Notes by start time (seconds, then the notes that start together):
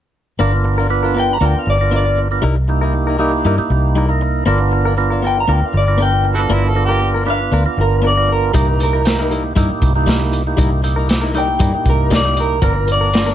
0.39 G1 B3 D4 F4 A#4
0.53 muted clean electric guitar stroke
0.64 muted clean electric guitar stroke
0.78 D4 F4 A#4
0.90 B3 D4 F4 B4, muted clean electric guitar stroke
1.03 D4 F4 A#4
1.14 B3 D4 F4 A#4
1.20 G5
1.33 A#5
1.41 D2 B3 D4 F4 A#4
1.45 G5
1.55 F5, muted clean electric guitar stroke, muted fingered electric bass stroke
1.66 G1 D5, muted clean electric guitar stroke
1.81 B3 D4 F4 A#4
1.91 B3 D4 F4 A#4
1.96 D5
2.06 muted clean electric guitar stroke
2.17 muted clean electric guitar stroke
2.31 B3 D4 F4 A#4
2.42 C2 G3 D#4 E4 A#4
2.56 muted clean electric guitar stroke
2.68 A#3 D#4 E4 G4, muted clean electric guitar stroke
2.81 D#4 E4 A#4
2.93 muted clean electric guitar stroke
3.07 D#4 E4 A#4
3.19 G3 A#3 D#4 E4 G4 A#4
3.33 muted clean electric guitar stroke
3.45 G2 G3 D#4 E4 A#4
3.58 A#3 D#4 E4 G4, muted fingered electric bass stroke, muted clean electric guitar stroke
3.70 C2, muted clean electric guitar stroke
3.95 G3 D#4 E4 A#4
4.09 A#3 D#4 E4 A#4, muted clean electric guitar stroke
4.21 muted clean electric guitar stroke
4.46 G1 B3 D4 F4 A#4
4.60 muted clean electric guitar stroke
4.72 muted clean electric guitar stroke
4.85 D4 F4 A#4
4.97 B3 D4 F4 A#4, muted clean electric guitar stroke
5.10 D4 F4 A#4
5.22 B3 D4 F4 A#4
5.27 G5
5.36 muted clean electric guitar stroke
5.40 A#5
5.48 D2 B3 D4 F4 A#4
5.52 G5
5.62 muted clean electric guitar stroke, muted fingered electric bass stroke
5.66 F5
5.73 G1, muted clean electric guitar stroke
5.77 D5
5.87 B3 D4 F4 A#4
5.98 B3 D4 F4 A#4
6.02 G5
6.12 muted clean electric guitar stroke
6.24 muted clean electric guitar stroke
6.34 B3 E4 F#4 A4
6.38 D4 F4 A#4
6.50 G1 B3 D4 E4 F4 A#4
6.64 muted clean electric guitar stroke
6.68 A4
6.75 B3 D4 F4 A#4, muted clean electric guitar stroke
6.85 G4 A#4
6.90 D4 F4
7.01 muted clean electric guitar stroke
7.14 D4 F4 A#4
7.26 B3 D4 F4 A#4 B4
7.30 F5
7.40 muted clean electric guitar stroke
7.52 D2 B3 D4 F4 A#4
7.66 B3 D4 F4 A#4, muted clean electric guitar stroke, muted fingered electric bass stroke
7.77 G1 A#4, muted clean electric guitar stroke
8.02 B3 D4 F4 A#4
8.07 D5
8.17 B3 D4 F4 A#4, muted clean electric guitar stroke
8.28 muted clean electric guitar stroke
8.32 A#4
8.54 C2 G3 A#3 D#4 E4 G4 A#4, kick, closed hi-hat
8.68 muted clean electric guitar stroke
8.80 A#4, muted clean electric guitar stroke, closed hi-hat
8.93 D#4 E4 A#4
9.05 A#3 D#4 E4 G4, muted clean electric guitar stroke, snare, closed hi-hat
9.19 D#4 E4 A#4
9.30 G3 D#4 E4 A#4, closed hi-hat
9.44 muted clean electric guitar stroke
9.56 G2 G3 A#3 D#4 E4 G4 A#4, kick, closed hi-hat
9.70 muted clean electric guitar stroke, muted fingered electric bass stroke
9.82 C2, muted clean electric guitar stroke, kick, closed hi-hat
9.96 A#3 D#4 E4 G4
10.06 G3 D#4 E4 A#4, kick, snare, closed hi-hat
10.21 muted clean electric guitar stroke
10.32 muted clean electric guitar stroke, closed hi-hat
10.47 A#3 D#4 E4 G4
10.57 C2 G3 D#4 E4 A#4, kick, closed hi-hat
10.71 muted clean electric guitar stroke
10.83 A#3 D#4 E4 G4, muted clean electric guitar stroke, closed hi-hat
10.96 D#4 E4 A#4
11.08 muted clean electric guitar stroke, snare, closed hi-hat
11.22 D#4 E4 A#4
11.34 G3 A#3 D#4 E4 G4 A#4, closed hi-hat
11.38 G5
11.48 muted clean electric guitar stroke
11.59 G2 G3 D#4 E4 A#4, kick, closed hi-hat
11.74 A#3 D#4 E4 G4, muted clean electric guitar stroke, muted fingered electric bass stroke
11.85 C2, muted clean electric guitar stroke, kick, closed hi-hat
11.90 A#4
12.10 G3 D#4 E4 A#4, kick, snare, closed hi-hat
12.15 D5
12.25 A#3 D#4 E4 G4, muted clean electric guitar stroke
12.37 A#4, muted clean electric guitar stroke, closed hi-hat
12.62 G1 F3 B3 D4 F4 A#4, kick, closed hi-hat
12.76 muted clean electric guitar stroke
12.87 muted clean electric guitar stroke, closed hi-hat
12.92 D5
13.01 B3 D4 A#4
13.13 B3 D4 F4 A#4, muted clean electric guitar stroke, snare, closed hi-hat
13.26 B3 D4 A#4